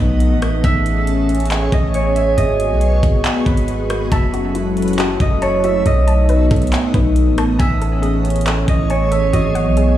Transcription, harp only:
Already playing: C#5 D#5
0.64 E5
1.73 D#5
1.95 C#5
2.16 E5
2.37 D#5
3.46 B4
4.12 E5
5.21 D#5
5.42 C#5
5.64 E5
5.86 D#5
7.60 E5
8.69 D#5
8.90 C#5
9.11 E5
9.33 D#5

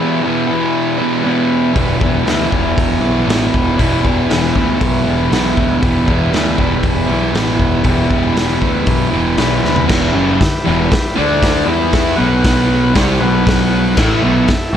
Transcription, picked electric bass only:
1.75 E1
2.01 E1
2.24 D2
2.53 E1
2.77 E1
3.00 B1
3.27 A1
3.54 E1
3.79 E1
4.04 E1
4.29 E1
4.55 D2
4.81 B1
5.06 E1
5.32 B1
5.58 D2
5.82 E1
6.08 E1
6.33 D2
6.58 E1
6.84 E1
7.09 B1
7.33 A1
7.59 E1
7.84 E1
8.10 E1
8.35 E1
8.62 D2
8.87 B1
9.12 E1
9.37 B1
9.63 D2
9.90 E1
10.13 F#1
10.40 muted picked electric bass stroke
10.67 E1
10.92 muted picked electric bass stroke
11.19 D2
11.67 E2
12.20 B1
12.96 C2
13.20 B1
13.97 A1
14.21 B1
14.49 muted picked electric bass stroke
14.73 A1

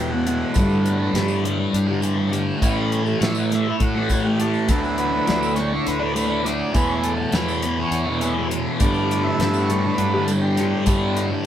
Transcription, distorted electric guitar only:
Already playing: E2
0.00 B2
0.10 E3
0.14 B2
0.26 E2 B2 E3
0.56 G2 D3 G3
1.01 D3 G3
1.15 G2 D3 G3
1.43 G2 D3 G3
1.58 muted distorted electric guitar stroke
1.87 D3 G3
2.01 G2 D3 G3
2.15 D3 G3
2.29 G2 D3 G3
2.59 A2 E3 A3
3.05 E3 A3
3.19 A2 E3 A3
3.50 A2 E3 A3
3.68 muted distorted electric guitar stroke
3.95 E3 A3
4.10 A2 E3 A3
4.24 E3 A3
4.39 A2 E3 A3
4.68 D3 A3 D4
5.12 A3 D4
5.27 D3 A3 D4
5.56 D3 A3 D4
5.73 muted distorted electric guitar stroke
5.99 A3 D4
6.13 D3 A3 D4
6.27 A3 D4
6.42 D3 A3
6.47 D4
6.72 E2 B2 E3
7.17 E3
7.21 B2
7.32 E2 B2 E3
7.63 E2 B2 E3
7.78 muted distorted electric guitar stroke
8.06 E3
8.11 B2
8.22 E2 B2 E3
8.35 B2 E3
8.51 E2 B2
8.55 E3
8.81 G2 D3 G3
9.25 D3 G3
9.40 G2 D3 G3
9.69 G2 D3 G3
9.85 muted distorted electric guitar stroke
10.13 D3 G3
10.28 G2 D3 G3
10.43 D3 G3
10.57 G2 D3 G3
10.85 G2 D3 G3
11.30 D3 G3

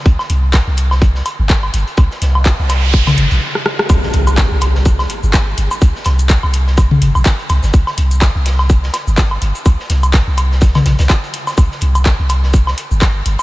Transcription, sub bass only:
0.06 C2
0.30 C2
0.67 C2
1.39 G1
1.74 G1
1.98 C2
2.22 C2
2.59 C2
3.18 G1
3.31 A#1
3.90 C2
4.14 C2
4.51 C2
5.23 G1
5.58 G1
5.82 C2
6.06 C2
6.43 C2
7.02 G1
7.15 A#1
7.50 C2
7.63 G1
7.74 C2
7.98 C2
8.35 C2
9.07 G1
9.42 G1
9.66 C2
9.90 C2
10.27 C2
10.86 A#1
10.99 C2
11.58 C2
11.82 C2
12.19 C2
12.91 G1
13.26 G1

